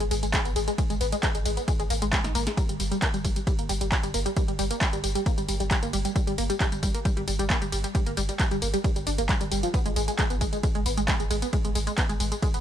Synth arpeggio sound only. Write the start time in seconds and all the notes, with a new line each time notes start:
0.00 G#3
0.11 G#3
0.23 G#3
0.34 G#3
0.45 B3
0.56 G#3
0.68 G#3
0.78 G#3
0.90 G#3
1.01 B3
1.12 G#3
1.23 G#3
1.35 G#3
1.45 G#3
1.57 B3
1.68 G#3
1.80 G#3
1.90 A#3
2.02 G#3
2.13 G#3
2.24 D#4
2.35 A#3
2.47 G#3
2.57 G3
2.69 G3
2.80 G3
2.91 G3
3.02 A#3
3.14 G3
3.24 G3
3.36 G3
3.47 G3
3.59 A#3
3.69 G3
3.81 G3
3.92 G3
4.03 G3
4.14 A#3
4.26 G3
4.36 G3
4.48 G3
4.59 G3
4.71 A#3
4.81 G3
4.93 G3
5.04 G3
5.15 G3
5.26 A#3
5.38 G3
5.48 G3
5.60 G3
5.71 G3
5.83 A#3
5.93 G3
6.05 G3
6.16 G3
6.27 G3
6.38 A#3
6.50 G3
6.60 G3
6.72 G3
6.83 G3
6.94 A#3
7.05 G3
7.17 G3
7.28 G3
7.39 G3
7.50 A#3
7.62 G3
7.72 G3
7.84 G3
7.95 G3
8.06 A#3
8.17 G3
8.29 G3
8.40 G3
8.51 G3
8.62 A#3
8.74 G3
8.84 G3
8.96 G3
9.07 D4
9.18 A#3
9.29 G3
9.41 G3
9.52 G3
9.63 F3
9.74 B3
9.86 G#3
9.96 G#3
10.08 G#3
10.19 G#3
10.30 B3
10.41 G#3
10.53 G#3
10.63 G#3
10.75 G#3
10.86 B3
10.97 G#3
11.08 G#3
11.20 G#3
11.31 G#3
11.42 B3
11.53 G#3
11.65 G#3
11.75 G#3
11.87 G#3
11.98 B3
12.09 G#3
12.20 G#3
12.32 G#3
12.42 G#3
12.54 B3